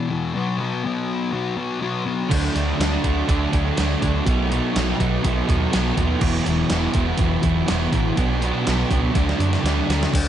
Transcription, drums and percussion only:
2.31 kick, crash
2.56 open hi-hat
2.81 snare, open hi-hat
3.04 kick, open hi-hat
3.29 kick, open hi-hat
3.53 kick, open hi-hat
3.77 snare, open hi-hat
4.02 kick, open hi-hat
4.27 kick, open hi-hat
4.52 open hi-hat
4.76 snare, open hi-hat
5.00 kick, open hi-hat
5.24 kick, open hi-hat
5.49 kick, open hi-hat
5.73 snare, open hi-hat
5.97 kick, open hi-hat
6.21 kick, crash
6.46 open hi-hat
6.70 snare, open hi-hat
6.94 kick, open hi-hat
7.18 kick, open hi-hat
7.43 kick, open hi-hat
7.68 snare, open hi-hat
7.93 kick, open hi-hat
8.17 kick, open hi-hat
8.42 open hi-hat
8.67 snare, open hi-hat
8.91 kick, open hi-hat
9.15 kick, snare, open hi-hat
9.29 snare
9.40 open hi-hat
9.53 snare
9.66 snare, open hi-hat
9.90 snare, open hi-hat
10.03 snare
10.14 kick, open hi-hat, crash

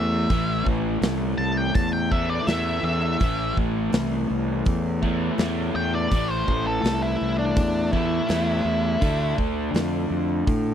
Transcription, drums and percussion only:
0.30 kick, open hi-hat
0.66 kick
1.02 snare, open hi-hat
1.75 kick, open hi-hat
2.12 kick
2.47 snare, open hi-hat
3.20 kick, open hi-hat
3.57 kick
3.93 snare, open hi-hat
4.65 kick, open hi-hat
5.03 kick
5.38 snare, open hi-hat
6.11 kick, open hi-hat
6.48 kick
6.84 snare, open hi-hat
7.56 kick, open hi-hat
7.93 kick
8.29 snare, open hi-hat
9.01 kick, open hi-hat
9.38 kick
9.75 snare, open hi-hat
10.47 kick, open hi-hat

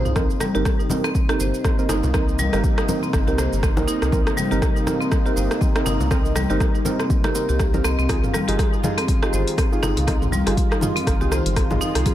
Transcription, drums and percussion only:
0.05 mid tom, shaker
0.16 kick, cross-stick, high conga, shaker
0.30 shaker
0.40 cross-stick, high conga, low conga, shaker
0.55 shaker
0.65 kick, cross-stick, shaker
0.80 shaker
0.89 high bongo, high conga, low conga, shaker
1.04 cross-stick, shaker
1.15 kick, shaker
1.29 cross-stick, shaker
1.40 shaker
1.54 shaker
1.64 kick, cross-stick, high conga, shaker
1.79 shaker
1.89 cross-stick, high bongo, low conga, shaker
2.03 low conga, shaker
2.14 kick, cross-stick, high conga, shaker
2.29 shaker
2.39 high conga, low conga, shaker
2.53 cross-stick, shaker
2.64 kick, shaker
2.78 cross-stick, shaker
2.88 high bongo, high conga, low conga, shaker
3.03 shaker
3.13 kick, cross-stick, high conga, shaker
3.28 low bongo, shaker
3.38 cross-stick, low bongo, shaker
3.53 shaker
3.63 kick, cross-stick, shaker
3.77 high bongo, high conga, shaker
3.88 shaker
4.02 cross-stick, shaker
4.12 kick, high conga, shaker
4.27 cross-stick, shaker
4.37 high conga, low conga, shaker
4.52 shaker
4.62 kick, cross-stick, shaker
4.77 shaker
4.87 cross-stick, high bongo, high conga, low conga, shaker
5.01 shaker
5.12 kick, cross-stick, shaker
5.26 shaker
5.37 shaker
5.51 cross-stick, shaker
5.61 kick, high conga, shaker
5.76 cross-stick, shaker
5.86 high bongo, low conga, shaker
6.01 low conga, shaker
6.11 kick, cross-stick, high conga, shaker
6.25 shaker
6.36 cross-stick, high conga, low conga, shaker
6.50 shaker
6.60 kick, cross-stick, shaker
6.75 shaker
6.85 high bongo, high conga, low conga, shaker
7.00 cross-stick, shaker
7.10 kick, high conga, shaker
7.24 cross-stick, high bongo, low bongo, shaker
7.35 low bongo, shaker
7.49 shaker
7.59 kick, cross-stick, shaker
7.74 high bongo, high conga, shaker
7.84 cross-stick, shaker
7.99 shaker
8.09 kick, cross-stick, closed hi-hat, high conga, shaker
8.23 mid tom, shaker
8.34 cross-stick, high conga, low conga, shaker
8.48 closed hi-hat, shaker
8.59 kick, cross-stick, closed hi-hat, shaker
8.73 shaker
8.83 mid tom, high bongo, high conga, low conga, shaker
8.98 cross-stick, closed hi-hat, shaker
9.08 kick, closed hi-hat, shaker
9.23 cross-stick, shaker
9.33 shaker
9.48 closed hi-hat, shaker
9.57 kick, cross-stick, closed hi-hat, high conga, shaker
9.73 shaker
9.83 cross-stick, high bongo, low conga, shaker
9.97 closed hi-hat, low conga, shaker
10.08 kick, cross-stick, closed hi-hat, high conga, shaker
10.22 mid tom, shaker
10.32 high conga, low conga, shaker
10.47 cross-stick, closed hi-hat, shaker
10.57 kick, closed hi-hat, shaker
10.72 cross-stick, shaker
10.81 mid tom, high bongo, high conga, low conga, shaker
10.97 closed hi-hat, shaker
11.07 kick, cross-stick, closed hi-hat, high conga, shaker
11.21 low bongo, shaker
11.32 cross-stick, low bongo, shaker
11.46 closed hi-hat, shaker
11.56 kick, cross-stick, closed hi-hat, shaker
11.70 mid tom, high bongo, high conga, shaker
11.81 shaker
11.95 cross-stick, closed hi-hat, shaker
12.06 kick, closed hi-hat, high conga, shaker

